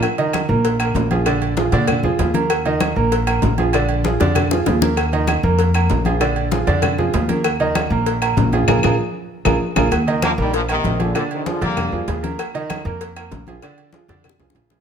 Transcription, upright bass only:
X:1
M:4/4
L:1/8
Q:1/4=194
K:Bbmix
V:1 name="Upright bass" clef=bass
z3 B,,,3 B,,,2- | B,,,3 B,,2 F,, E,,2- | E,,3 B,,,3 B,,,2- | B,,,3 F,,3 E,,2- |
E,,3 F,,3 B,,,2- | B,,,3 F,,3 E,,2- | E,,3 B,,,3 B,,,2 | B,,, B,,, z3 B,,, z B,,, |
E,,3 B,,,3 B,,,2 | z3 F,,2 F,, E,,2 | z3 F,,3 B,,,2 | z3 F,,2 C,, B,,,2 |]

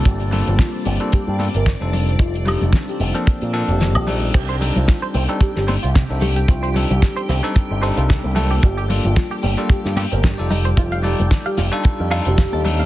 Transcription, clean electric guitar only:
X:1
M:4/4
L:1/16
Q:"Swing 16ths" 1/4=112
K:Cdor
V:1 name="Clean electric guitar"
z16 | z16 | C c z3 c C C z2 c F C, z A, G | C c z3 c C C z2 c F C, z A, G |
G, G z3 G G, G, z2 G C G,, z E c | F f z3 f F F z2 f C F A F, f |]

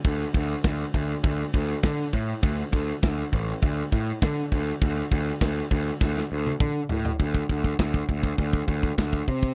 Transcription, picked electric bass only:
X:1
M:4/4
L:1/8
Q:1/4=101
K:none
V:1 name="Picked electric bass" clef=bass
D,, D,, D,, D,, D,, D,, D, A,, | D,, D,, D,, A,,, D,, A,, D, D,, | D,, D,, D,, D,, D,, D,, D, A,, | D,, D,, D,, D,, D,, D,, D,, C, |]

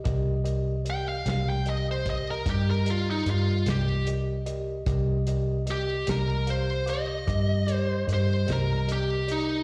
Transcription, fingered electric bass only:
X:1
M:12/8
L:1/8
Q:3/8=50
K:Cm
V:1 name="Fingered electric bass" clef=bass
C,,3 C,,3 G,,2 G,, C,,3 | C,,3 C,,3 G,,2 G,, C,,3 |]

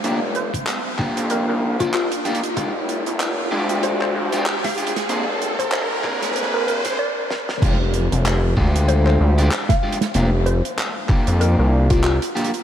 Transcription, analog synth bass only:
X:1
M:4/4
L:1/16
Q:"Swing 16ths" 1/4=95
K:Fdor
V:1 name="Analog synth bass" clef=bass
F,,,3 z4 F,,2 C,,4 z3 | F,,,3 F,,,3 D,,4 D,,2 z4 | F,,,3 F,,,2 F,,,4 F,,,3 z4 | F,,,3 F,,,3 D,,4 D,,2 z4 |
F,,,3 z4 F,,2 C,,4 z3 |]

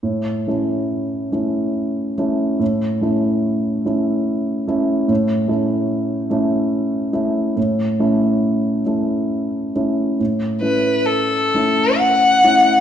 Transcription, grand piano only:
X:1
M:3/4
L:1/8
Q:1/4=70
K:A
V:1 name="Grand piano"
A,, [A,CE]2 [A,CE]2 [A,CE] | A,, [A,CE]2 [A,CE]2 [A,CE] | A,, [A,CE]2 [A,CE]2 [A,CE] | A,, [A,CE]2 [A,CE]2 [A,CE] |
A,, [A,CE]2 [A,CE]2 [A,CE] |]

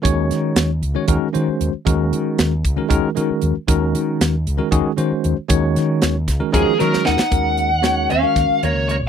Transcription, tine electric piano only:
X:1
M:7/8
L:1/16
Q:1/4=116
K:Ebdor
V:1 name="Tine electric piano"
[E,A,DGd]4- [E,A,DGd] z2 [E,A,DGd] [E,A,DGB] z [E,A,DGc]3 z | [E,A,DGB]4- [E,A,DGB] z2 [E,A,DGB] [E,A,DGB] z [E,A,DGB]3 z | [E,A,DGB]4- [E,A,DGB] z2 [E,A,DGB] [E,A,DGA] z [E,A,DGc]3 z | [E,A,DGd]4- [E,A,DGd] z2 [E,A,DGB] [E,A,DGB] z [E,A,DGB]3 z |
[E,A,DGB]3 z [E,A,DGd]2 z [E,A,DGB]6 z |]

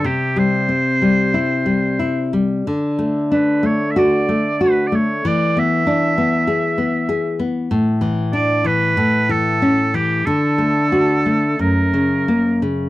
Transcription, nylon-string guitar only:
X:1
M:4/4
L:1/8
Q:1/4=93
K:D
V:1 name="Nylon-string guitar"
=C, G, =C G, E G, E G, | D, A, D A, F A, F A, | E, B, D B, ^G B, G B, | A,, E, D E, A,, E, C E, |
D, A, F A, F,, C, ^A, C, |]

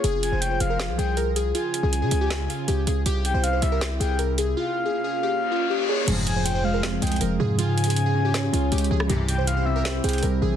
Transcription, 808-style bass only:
X:1
M:4/4
L:1/16
Q:1/4=159
K:Fm
V:1 name="808-style bass" clef=bass
F,,,3 F,,,3 F,,,3 C,, C,,6 | z3 C,,2 D, D,,4 z2 D,,2 D,,2 | C,,3 C,,3 C,,4 C,,6 | z16 |
F,,,8- F,,,2 C,,2 F,,,2 A,,2- | A,,8- A,,2 D,,2 D,,2 D,,2 | C,,8- C,,2 C,,2 C,,2 B,,,2 |]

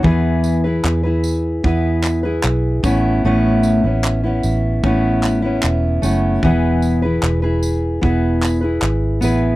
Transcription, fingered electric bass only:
X:1
M:4/4
L:1/16
Q:1/4=75
K:E
V:1 name="Fingered electric bass" clef=bass
E,,4 E,,4 E,,4 B,,,2 A,,,2 | A,,,3 A,,,3 A,,,2 A,,,4 E,,,2 F,,,2 | E,,,4 E,,,4 E,,,4 G,,,2 A,,,2 |]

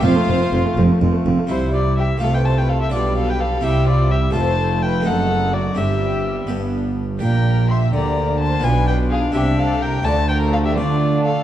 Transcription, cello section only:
X:1
M:6/8
L:1/8
Q:3/8=84
K:F
V:1 name="Cello section" clef=bass
F,, F,, F,, F,, F,, F,, | [K:C] C,3 C,3 | B,,3 C,3 | F,,3 ^F,,3 |
G,,3 G,,3 | [K:Gdor] B,,3 D,3 | =B,,3 C,3 | D,3 D3 |]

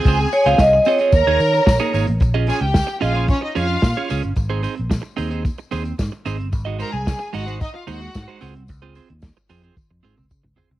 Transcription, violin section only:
X:1
M:4/4
L:1/16
Q:1/4=111
K:Ab
V:1 name="Violin section"
[Aa]6 z2 [Bb]6 z2 | z2 [Aa] [Gg]3 [Ff]2 [Dd] [Ee] [Ff]4 z2 | z16 | z2 [Bb] [Aa]3 [_G_g]2 [Ee] [Ff] [Gg]4 z2 |
z16 |]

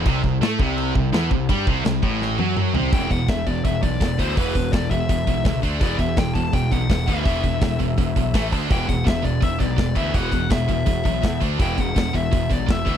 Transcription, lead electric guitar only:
X:1
M:4/4
L:1/8
Q:1/4=166
K:Em
V:1 name="Lead electric guitar"
z8 | z8 | g f e d e d2 c | B2 d e4 z |
d e g a g f2 e- | e6- e z | g f e d e d2 e | f2 e e4 z |
g f2 e2 d e2 |]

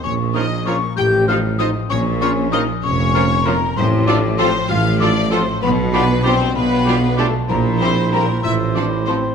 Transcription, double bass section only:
X:1
M:6/8
L:1/8
Q:3/8=64
K:Bbdor
V:1 name="Double bass section" clef=bass
B,,,3 =A,,,3 | B,,,3 F,,,3 | [K:Flyd] A,,,3 A,,,3 | B,,,3 B,,,3 |
_B,,,3 A,,,3 |]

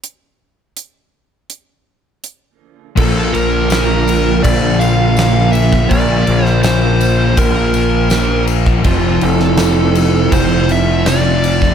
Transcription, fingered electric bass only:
X:1
M:4/4
L:1/8
Q:1/4=82
K:Bblyd
V:1 name="Fingered electric bass" clef=bass
z8 | B,,, B,,,3 B,,,4 | B,,, B,,,3 B,,,4 | F,,, F,,,3 F,,,4 |]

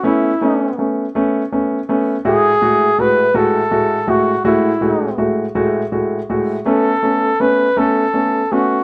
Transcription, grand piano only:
X:1
M:6/8
L:1/8
Q:3/8=54
K:A
V:1 name="Grand piano"
[A,B,C] [A,B,C] [A,B,C] [A,B,C] [A,B,C] [A,B,C] | [A,,G,A,F] [A,,G,A,F] [A,,G,A,F] [A,,G,A,F] [A,,G,A,F] [A,,G,A,F] | [A,,G,A,F] [A,,G,A,F] [A,,G,A,F] [A,,G,A,F] [A,,G,A,F] [A,,G,A,F] | [A,B,C] [A,B,C] [A,B,C] [A,B,C] [A,B,C] [A,B,C] |]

